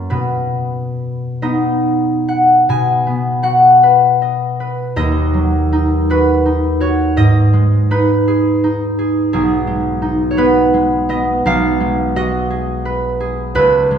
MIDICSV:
0, 0, Header, 1, 2, 480
1, 0, Start_track
1, 0, Key_signature, 5, "major"
1, 0, Tempo, 898204
1, 51, Time_signature, 6, 3, 24, 8
1, 531, Tempo, 854701
1, 1491, Tempo, 755668
1, 3411, Tempo, 724638
1, 5331, Tempo, 703400
1, 8988, End_track
2, 0, Start_track
2, 0, Title_t, "Harp"
2, 0, Program_c, 0, 46
2, 0, Note_on_c, 0, 42, 54
2, 0, Note_on_c, 0, 58, 38
2, 0, Note_on_c, 0, 64, 38
2, 0, Note_on_c, 0, 73, 77
2, 0, Note_on_c, 0, 76, 86
2, 53, Note_on_c, 0, 71, 58
2, 57, Note_on_c, 0, 47, 53
2, 67, Note_off_c, 0, 76, 0
2, 68, Note_off_c, 0, 42, 0
2, 68, Note_off_c, 0, 58, 0
2, 69, Note_off_c, 0, 64, 0
2, 69, Note_off_c, 0, 73, 0
2, 771, Note_on_c, 0, 59, 38
2, 772, Note_on_c, 0, 75, 67
2, 774, Note_on_c, 0, 63, 38
2, 775, Note_off_c, 0, 71, 0
2, 1256, Note_on_c, 0, 78, 66
2, 1479, Note_off_c, 0, 47, 0
2, 1483, Note_on_c, 0, 47, 62
2, 1488, Note_on_c, 0, 80, 87
2, 1715, Note_off_c, 0, 59, 0
2, 1722, Note_on_c, 0, 59, 43
2, 1946, Note_off_c, 0, 78, 0
2, 1952, Note_on_c, 0, 66, 44
2, 1955, Note_on_c, 0, 78, 79
2, 2208, Note_on_c, 0, 71, 48
2, 2302, Note_off_c, 0, 80, 0
2, 2445, Note_off_c, 0, 75, 0
2, 2453, Note_on_c, 0, 75, 46
2, 2689, Note_off_c, 0, 71, 0
2, 2697, Note_on_c, 0, 71, 46
2, 2920, Note_off_c, 0, 75, 0
2, 2926, Note_on_c, 0, 39, 60
2, 2929, Note_on_c, 0, 75, 87
2, 2948, Note_off_c, 0, 47, 0
2, 3157, Note_off_c, 0, 63, 0
2, 3165, Note_on_c, 0, 54, 45
2, 3411, Note_on_c, 0, 63, 46
2, 3652, Note_off_c, 0, 66, 0
2, 3653, Note_off_c, 0, 71, 0
2, 3658, Note_on_c, 0, 66, 49
2, 3663, Note_on_c, 0, 71, 79
2, 3887, Note_off_c, 0, 63, 0
2, 3895, Note_on_c, 0, 63, 47
2, 4118, Note_off_c, 0, 66, 0
2, 4125, Note_on_c, 0, 66, 46
2, 4130, Note_on_c, 0, 73, 72
2, 4233, Note_off_c, 0, 59, 0
2, 4361, Note_off_c, 0, 75, 0
2, 4364, Note_on_c, 0, 44, 57
2, 4369, Note_on_c, 0, 75, 93
2, 4371, Note_off_c, 0, 78, 0
2, 4375, Note_off_c, 0, 54, 0
2, 4376, Note_off_c, 0, 39, 0
2, 4380, Note_off_c, 0, 66, 0
2, 4534, Note_off_c, 0, 73, 0
2, 4608, Note_on_c, 0, 56, 45
2, 4849, Note_off_c, 0, 63, 0
2, 4849, Note_off_c, 0, 71, 0
2, 4856, Note_on_c, 0, 63, 49
2, 4859, Note_on_c, 0, 71, 74
2, 5100, Note_on_c, 0, 68, 55
2, 5332, Note_off_c, 0, 63, 0
2, 5340, Note_on_c, 0, 63, 48
2, 5570, Note_off_c, 0, 68, 0
2, 5578, Note_on_c, 0, 68, 51
2, 5805, Note_off_c, 0, 68, 0
2, 5813, Note_on_c, 0, 68, 84
2, 5817, Note_on_c, 0, 35, 59
2, 5825, Note_off_c, 0, 44, 0
2, 6037, Note_off_c, 0, 56, 0
2, 6045, Note_on_c, 0, 56, 49
2, 6274, Note_off_c, 0, 63, 0
2, 6283, Note_on_c, 0, 63, 48
2, 6480, Note_on_c, 0, 73, 61
2, 6519, Note_off_c, 0, 71, 0
2, 6523, Note_on_c, 0, 59, 54
2, 6530, Note_on_c, 0, 71, 95
2, 6555, Note_off_c, 0, 73, 0
2, 6765, Note_off_c, 0, 56, 0
2, 6773, Note_on_c, 0, 56, 56
2, 7001, Note_off_c, 0, 75, 0
2, 7005, Note_off_c, 0, 59, 0
2, 7014, Note_on_c, 0, 59, 50
2, 7018, Note_on_c, 0, 75, 83
2, 7257, Note_off_c, 0, 35, 0
2, 7263, Note_on_c, 0, 35, 68
2, 7270, Note_on_c, 0, 77, 100
2, 7492, Note_off_c, 0, 56, 0
2, 7501, Note_on_c, 0, 56, 54
2, 7736, Note_off_c, 0, 75, 0
2, 7745, Note_on_c, 0, 66, 55
2, 7746, Note_on_c, 0, 75, 96
2, 7971, Note_off_c, 0, 68, 0
2, 7979, Note_on_c, 0, 68, 59
2, 8073, Note_off_c, 0, 77, 0
2, 8209, Note_off_c, 0, 71, 0
2, 8217, Note_on_c, 0, 71, 58
2, 8448, Note_off_c, 0, 68, 0
2, 8457, Note_on_c, 0, 68, 55
2, 8685, Note_off_c, 0, 71, 0
2, 8691, Note_on_c, 0, 37, 70
2, 8695, Note_on_c, 0, 71, 100
2, 8712, Note_off_c, 0, 63, 0
2, 8714, Note_off_c, 0, 66, 0
2, 8714, Note_off_c, 0, 75, 0
2, 8715, Note_off_c, 0, 35, 0
2, 8930, Note_off_c, 0, 56, 0
2, 8938, Note_on_c, 0, 56, 59
2, 8988, Note_off_c, 0, 37, 0
2, 8988, Note_off_c, 0, 56, 0
2, 8988, Note_off_c, 0, 59, 0
2, 8988, Note_off_c, 0, 68, 0
2, 8988, Note_off_c, 0, 71, 0
2, 8988, End_track
0, 0, End_of_file